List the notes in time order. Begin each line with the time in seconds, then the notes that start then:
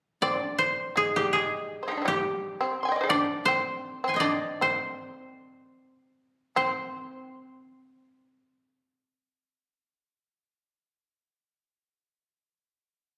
0.22 C4 D5
0.44 D4
0.58 C5
0.96 G#3 G#4
1.16 G3 G4
1.33 G#3 G#4
1.83 C5
1.88 G#3 G4 G#4
1.92 D#4
1.97 D4
2.02 G3 G#3 C4
2.08 G4
2.61 C4
2.83 G#5 C6
2.89 D#5 G5
2.96 D5
3.01 G#4 C5
3.09 D4 D#4 G4 D5
3.45 C4 C5
4.04 C4 C6
4.09 G#5
4.14 D#5 G5
4.20 D4 D5
4.61 C4 C5
6.56 C4 C5